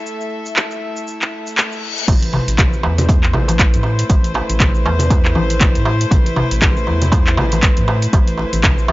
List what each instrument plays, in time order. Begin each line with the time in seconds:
Already playing: string section A3 E4 A4 E5
0.06 shaker
0.21 shaker
0.46 shaker
0.56 clap, shaker
0.71 shaker
0.97 shaker
1.07 reverse cymbal, shaker
1.22 clap, shaker
1.47 shaker
1.58 clap, shaker
1.72 shaker
1.98 shaker
2.08 analog synth bass A1, string section A3 E4 B4 C5, kick, closed hi-hat, crash, darbuka tek, low conga, shaker
2.22 closed hi-hat, shaker
2.33 mid tom, muted conga, darbuka tek
2.48 analog synth bass A1, closed hi-hat, shaker
2.58 kick, clap, closed hi-hat, darbuka tek, low conga, shaker
2.73 muted conga, shaker
2.83 analog synth bass E2, darbuka tek, high conga
2.98 closed hi-hat, low conga, shaker
3.09 kick, closed hi-hat, muted conga, darbuka ka, darbuka tek, shaker
3.23 clap, shaker
3.33 analog synth bass A1, darbuka tek, low conga
3.48 closed hi-hat, darbuka ka, muted conga, high conga, shaker
3.59 kick, clap, closed hi-hat, darbuka tek, shaker
3.73 analog synth bass A2, closed hi-hat, high conga, shaker
3.83 muted conga, darbuka tek
3.99 closed hi-hat, shaker
4.10 analog synth bass A1, kick, closed hi-hat, darbuka tek, shaker
4.24 closed hi-hat, shaker
4.34 muted conga, darbuka tek
4.50 analog synth bass A1, closed hi-hat, high conga, shaker
4.60 kick, clap, closed hi-hat, darbuka tek, low conga, shaker
4.75 muted conga, shaker
4.85 analog synth bass E2, darbuka ka, high conga, darbuka tek
4.99 closed hi-hat, low conga, shaker
5.10 kick, closed hi-hat, muted conga, darbuka tek, shaker
5.25 clap, darbuka ka, shaker
5.35 analog synth bass A1, darbuka ka, darbuka tek, high conga
5.50 closed hi-hat, muted conga, shaker
5.60 kick, clap, closed hi-hat, darbuka tek, low conga, shaker
5.75 analog synth bass A2, closed hi-hat, shaker
5.85 muted conga, darbuka tek
6.01 closed hi-hat, shaker
6.11 analog synth bass A1, kick, closed hi-hat, darbuka tek, low conga, shaker
6.26 closed hi-hat, shaker
6.36 mid tom, muted conga, darbuka tek
6.51 analog synth bass A1, closed hi-hat, shaker
6.62 kick, clap, closed hi-hat, darbuka tek, low conga, shaker
6.77 muted conga, shaker
6.87 analog synth bass E2, darbuka tek, high conga
7.02 closed hi-hat, low conga, shaker
7.12 kick, closed hi-hat, darbuka ka, muted conga, darbuka tek, shaker
7.27 clap, shaker
7.37 analog synth bass A1, darbuka tek, low conga
7.52 closed hi-hat, muted conga, darbuka ka, high conga, shaker
7.63 kick, clap, closed hi-hat, darbuka tek, shaker
7.77 analog synth bass A2, closed hi-hat, high conga, shaker
7.88 muted conga, darbuka tek
8.02 closed hi-hat, shaker
8.13 analog synth bass A1, kick, closed hi-hat, darbuka tek, shaker
8.28 closed hi-hat, shaker
8.38 muted conga, darbuka tek
8.53 analog synth bass A1, closed hi-hat, high conga, shaker
8.63 kick, clap, closed hi-hat, darbuka tek, low conga, shaker
8.78 muted conga, shaker
8.88 analog synth bass E2, darbuka ka, darbuka tek, high conga